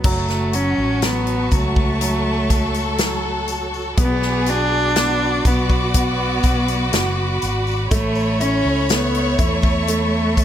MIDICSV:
0, 0, Header, 1, 7, 480
1, 0, Start_track
1, 0, Key_signature, 3, "minor"
1, 0, Tempo, 983607
1, 21, Time_signature, 4, 2, 24, 8
1, 5097, End_track
2, 0, Start_track
2, 0, Title_t, "String section"
2, 0, Program_c, 0, 48
2, 19, Note_on_c, 0, 73, 73
2, 19, Note_on_c, 0, 81, 73
2, 19, Note_on_c, 0, 85, 79
2, 22, Note_on_c, 0, 66, 72
2, 1921, Note_off_c, 0, 73, 0
2, 1921, Note_off_c, 0, 81, 0
2, 1921, Note_off_c, 0, 85, 0
2, 1945, Note_on_c, 0, 74, 69
2, 1945, Note_on_c, 0, 86, 86
2, 1947, Note_on_c, 0, 83, 72
2, 3842, Note_off_c, 0, 66, 0
2, 3844, Note_off_c, 0, 74, 0
2, 3844, Note_off_c, 0, 86, 0
2, 3860, Note_on_c, 0, 57, 74
2, 3860, Note_on_c, 0, 76, 68
2, 3862, Note_on_c, 0, 85, 86
2, 5097, Note_off_c, 0, 57, 0
2, 5097, Note_off_c, 0, 76, 0
2, 5097, Note_off_c, 0, 83, 0
2, 5097, Note_off_c, 0, 85, 0
2, 5097, End_track
3, 0, Start_track
3, 0, Title_t, "Violin section"
3, 0, Program_c, 1, 48
3, 19, Note_on_c, 1, 66, 81
3, 961, Note_off_c, 1, 66, 0
3, 980, Note_on_c, 1, 69, 94
3, 1940, Note_off_c, 1, 69, 0
3, 1942, Note_on_c, 1, 68, 106
3, 2420, Note_on_c, 1, 66, 106
3, 2422, Note_off_c, 1, 68, 0
3, 3841, Note_off_c, 1, 66, 0
3, 3860, Note_on_c, 1, 73, 121
3, 5097, Note_off_c, 1, 73, 0
3, 5097, End_track
4, 0, Start_track
4, 0, Title_t, "Cello"
4, 0, Program_c, 2, 42
4, 33, Note_on_c, 2, 57, 86
4, 269, Note_on_c, 2, 61, 100
4, 276, Note_off_c, 2, 57, 0
4, 515, Note_on_c, 2, 59, 89
4, 522, Note_off_c, 2, 61, 0
4, 757, Note_on_c, 2, 57, 90
4, 764, Note_off_c, 2, 59, 0
4, 1709, Note_off_c, 2, 57, 0
4, 1955, Note_on_c, 2, 59, 103
4, 2191, Note_on_c, 2, 62, 114
4, 2198, Note_off_c, 2, 59, 0
4, 2670, Note_on_c, 2, 59, 90
4, 2677, Note_off_c, 2, 62, 0
4, 2903, Note_off_c, 2, 59, 0
4, 2906, Note_on_c, 2, 59, 89
4, 3604, Note_off_c, 2, 59, 0
4, 3864, Note_on_c, 2, 57, 102
4, 4104, Note_on_c, 2, 61, 106
4, 4112, Note_off_c, 2, 57, 0
4, 4348, Note_on_c, 2, 59, 92
4, 4356, Note_off_c, 2, 61, 0
4, 4591, Note_on_c, 2, 57, 94
4, 4598, Note_off_c, 2, 59, 0
4, 5097, Note_off_c, 2, 57, 0
4, 5097, End_track
5, 0, Start_track
5, 0, Title_t, "Grand piano"
5, 0, Program_c, 3, 0
5, 0, Control_c, 3, 64, 127
5, 24, Note_on_c, 3, 54, 71
5, 27, Control_c, 3, 64, 0
5, 110, Control_c, 3, 64, 127
5, 257, Note_off_c, 3, 54, 0
5, 264, Note_on_c, 3, 54, 55
5, 493, Note_off_c, 3, 54, 0
5, 501, Note_on_c, 3, 54, 57
5, 732, Note_off_c, 3, 54, 0
5, 739, Note_on_c, 3, 54, 54
5, 973, Note_off_c, 3, 54, 0
5, 980, Note_on_c, 3, 54, 58
5, 1452, Note_off_c, 3, 54, 0
5, 1459, Note_on_c, 3, 54, 54
5, 1926, Note_off_c, 3, 54, 0
5, 1940, Note_on_c, 3, 59, 68
5, 1946, Control_c, 3, 64, 0
5, 2023, Control_c, 3, 64, 127
5, 2180, Note_on_c, 3, 66, 55
5, 2411, Note_off_c, 3, 59, 0
5, 2418, Note_on_c, 3, 59, 54
5, 2653, Note_off_c, 3, 66, 0
5, 2660, Note_on_c, 3, 66, 57
5, 2892, Note_off_c, 3, 59, 0
5, 2899, Note_on_c, 3, 59, 50
5, 3372, Note_off_c, 3, 66, 0
5, 3379, Note_on_c, 3, 66, 67
5, 3840, Note_off_c, 3, 59, 0
5, 3846, Note_off_c, 3, 66, 0
5, 3860, Note_on_c, 3, 57, 68
5, 3868, Control_c, 3, 64, 0
5, 3954, Control_c, 3, 64, 127
5, 4099, Note_on_c, 3, 64, 55
5, 4335, Note_off_c, 3, 57, 0
5, 4343, Note_on_c, 3, 57, 57
5, 4575, Note_off_c, 3, 64, 0
5, 4583, Note_on_c, 3, 64, 59
5, 4815, Note_off_c, 3, 57, 0
5, 4823, Note_on_c, 3, 57, 53
5, 5097, Note_off_c, 3, 57, 0
5, 5097, Note_off_c, 3, 64, 0
5, 5097, End_track
6, 0, Start_track
6, 0, Title_t, "Fretless electric bass"
6, 0, Program_c, 4, 35
6, 21, Note_on_c, 4, 30, 110
6, 361, Note_off_c, 4, 30, 0
6, 379, Note_on_c, 4, 33, 73
6, 721, Note_off_c, 4, 33, 0
6, 741, Note_on_c, 4, 37, 89
6, 1921, Note_off_c, 4, 37, 0
6, 1941, Note_on_c, 4, 35, 105
6, 2642, Note_off_c, 4, 35, 0
6, 2660, Note_on_c, 4, 35, 96
6, 3121, Note_off_c, 4, 35, 0
6, 3141, Note_on_c, 4, 35, 84
6, 3364, Note_off_c, 4, 35, 0
6, 3380, Note_on_c, 4, 30, 101
6, 3604, Note_off_c, 4, 30, 0
6, 3623, Note_on_c, 4, 32, 90
6, 3845, Note_off_c, 4, 32, 0
6, 3862, Note_on_c, 4, 33, 110
6, 4202, Note_off_c, 4, 33, 0
6, 4221, Note_on_c, 4, 37, 83
6, 4561, Note_off_c, 4, 37, 0
6, 4582, Note_on_c, 4, 40, 102
6, 5097, Note_off_c, 4, 40, 0
6, 5097, End_track
7, 0, Start_track
7, 0, Title_t, "Drums"
7, 18, Note_on_c, 9, 54, 49
7, 21, Note_on_c, 9, 36, 105
7, 21, Note_on_c, 9, 49, 94
7, 67, Note_off_c, 9, 54, 0
7, 70, Note_off_c, 9, 36, 0
7, 70, Note_off_c, 9, 49, 0
7, 138, Note_on_c, 9, 54, 33
7, 143, Note_on_c, 9, 38, 35
7, 187, Note_off_c, 9, 54, 0
7, 192, Note_off_c, 9, 38, 0
7, 259, Note_on_c, 9, 42, 75
7, 263, Note_on_c, 9, 54, 49
7, 308, Note_off_c, 9, 42, 0
7, 312, Note_off_c, 9, 54, 0
7, 498, Note_on_c, 9, 42, 91
7, 500, Note_on_c, 9, 54, 70
7, 501, Note_on_c, 9, 38, 118
7, 547, Note_off_c, 9, 42, 0
7, 549, Note_off_c, 9, 54, 0
7, 550, Note_off_c, 9, 38, 0
7, 618, Note_on_c, 9, 42, 49
7, 667, Note_off_c, 9, 42, 0
7, 737, Note_on_c, 9, 54, 41
7, 741, Note_on_c, 9, 36, 83
7, 741, Note_on_c, 9, 42, 65
7, 786, Note_off_c, 9, 54, 0
7, 789, Note_off_c, 9, 36, 0
7, 790, Note_off_c, 9, 42, 0
7, 860, Note_on_c, 9, 36, 84
7, 909, Note_off_c, 9, 36, 0
7, 980, Note_on_c, 9, 54, 53
7, 981, Note_on_c, 9, 42, 94
7, 1029, Note_off_c, 9, 54, 0
7, 1030, Note_off_c, 9, 42, 0
7, 1220, Note_on_c, 9, 42, 70
7, 1221, Note_on_c, 9, 36, 81
7, 1221, Note_on_c, 9, 54, 44
7, 1269, Note_off_c, 9, 42, 0
7, 1270, Note_off_c, 9, 36, 0
7, 1270, Note_off_c, 9, 54, 0
7, 1339, Note_on_c, 9, 42, 51
7, 1345, Note_on_c, 9, 54, 35
7, 1388, Note_off_c, 9, 42, 0
7, 1394, Note_off_c, 9, 54, 0
7, 1456, Note_on_c, 9, 42, 81
7, 1461, Note_on_c, 9, 38, 118
7, 1461, Note_on_c, 9, 54, 81
7, 1505, Note_off_c, 9, 42, 0
7, 1509, Note_off_c, 9, 54, 0
7, 1510, Note_off_c, 9, 38, 0
7, 1697, Note_on_c, 9, 42, 72
7, 1700, Note_on_c, 9, 54, 50
7, 1745, Note_off_c, 9, 42, 0
7, 1749, Note_off_c, 9, 54, 0
7, 1824, Note_on_c, 9, 54, 29
7, 1873, Note_off_c, 9, 54, 0
7, 1939, Note_on_c, 9, 42, 88
7, 1940, Note_on_c, 9, 36, 99
7, 1940, Note_on_c, 9, 54, 47
7, 1988, Note_off_c, 9, 42, 0
7, 1989, Note_off_c, 9, 36, 0
7, 1989, Note_off_c, 9, 54, 0
7, 2060, Note_on_c, 9, 38, 35
7, 2109, Note_off_c, 9, 38, 0
7, 2178, Note_on_c, 9, 42, 77
7, 2183, Note_on_c, 9, 54, 49
7, 2226, Note_off_c, 9, 42, 0
7, 2232, Note_off_c, 9, 54, 0
7, 2419, Note_on_c, 9, 42, 96
7, 2422, Note_on_c, 9, 38, 116
7, 2422, Note_on_c, 9, 54, 70
7, 2468, Note_off_c, 9, 42, 0
7, 2471, Note_off_c, 9, 38, 0
7, 2471, Note_off_c, 9, 54, 0
7, 2660, Note_on_c, 9, 36, 93
7, 2660, Note_on_c, 9, 42, 60
7, 2660, Note_on_c, 9, 54, 46
7, 2708, Note_off_c, 9, 42, 0
7, 2708, Note_off_c, 9, 54, 0
7, 2709, Note_off_c, 9, 36, 0
7, 2778, Note_on_c, 9, 54, 37
7, 2780, Note_on_c, 9, 36, 84
7, 2827, Note_off_c, 9, 54, 0
7, 2828, Note_off_c, 9, 36, 0
7, 2899, Note_on_c, 9, 42, 106
7, 2901, Note_on_c, 9, 36, 97
7, 2901, Note_on_c, 9, 54, 52
7, 2948, Note_off_c, 9, 42, 0
7, 2950, Note_off_c, 9, 36, 0
7, 2950, Note_off_c, 9, 54, 0
7, 3138, Note_on_c, 9, 54, 40
7, 3141, Note_on_c, 9, 36, 83
7, 3141, Note_on_c, 9, 42, 74
7, 3187, Note_off_c, 9, 54, 0
7, 3190, Note_off_c, 9, 36, 0
7, 3190, Note_off_c, 9, 42, 0
7, 3260, Note_on_c, 9, 42, 53
7, 3262, Note_on_c, 9, 54, 36
7, 3309, Note_off_c, 9, 42, 0
7, 3311, Note_off_c, 9, 54, 0
7, 3381, Note_on_c, 9, 42, 88
7, 3382, Note_on_c, 9, 54, 87
7, 3386, Note_on_c, 9, 38, 125
7, 3430, Note_off_c, 9, 42, 0
7, 3431, Note_off_c, 9, 54, 0
7, 3435, Note_off_c, 9, 38, 0
7, 3620, Note_on_c, 9, 54, 56
7, 3621, Note_on_c, 9, 42, 72
7, 3669, Note_off_c, 9, 54, 0
7, 3670, Note_off_c, 9, 42, 0
7, 3742, Note_on_c, 9, 54, 33
7, 3791, Note_off_c, 9, 54, 0
7, 3859, Note_on_c, 9, 54, 45
7, 3862, Note_on_c, 9, 36, 102
7, 3863, Note_on_c, 9, 42, 92
7, 3908, Note_off_c, 9, 54, 0
7, 3911, Note_off_c, 9, 36, 0
7, 3912, Note_off_c, 9, 42, 0
7, 3978, Note_on_c, 9, 54, 34
7, 4027, Note_off_c, 9, 54, 0
7, 4101, Note_on_c, 9, 54, 47
7, 4103, Note_on_c, 9, 42, 80
7, 4150, Note_off_c, 9, 54, 0
7, 4152, Note_off_c, 9, 42, 0
7, 4339, Note_on_c, 9, 54, 71
7, 4343, Note_on_c, 9, 42, 101
7, 4346, Note_on_c, 9, 38, 115
7, 4388, Note_off_c, 9, 54, 0
7, 4392, Note_off_c, 9, 42, 0
7, 4394, Note_off_c, 9, 38, 0
7, 4463, Note_on_c, 9, 42, 51
7, 4512, Note_off_c, 9, 42, 0
7, 4579, Note_on_c, 9, 54, 49
7, 4581, Note_on_c, 9, 36, 88
7, 4583, Note_on_c, 9, 42, 62
7, 4628, Note_off_c, 9, 54, 0
7, 4630, Note_off_c, 9, 36, 0
7, 4632, Note_off_c, 9, 42, 0
7, 4695, Note_on_c, 9, 54, 34
7, 4701, Note_on_c, 9, 36, 92
7, 4743, Note_off_c, 9, 54, 0
7, 4750, Note_off_c, 9, 36, 0
7, 4819, Note_on_c, 9, 54, 54
7, 4822, Note_on_c, 9, 42, 105
7, 4867, Note_off_c, 9, 54, 0
7, 4871, Note_off_c, 9, 42, 0
7, 5061, Note_on_c, 9, 54, 44
7, 5062, Note_on_c, 9, 36, 85
7, 5064, Note_on_c, 9, 42, 76
7, 5097, Note_off_c, 9, 36, 0
7, 5097, Note_off_c, 9, 42, 0
7, 5097, Note_off_c, 9, 54, 0
7, 5097, End_track
0, 0, End_of_file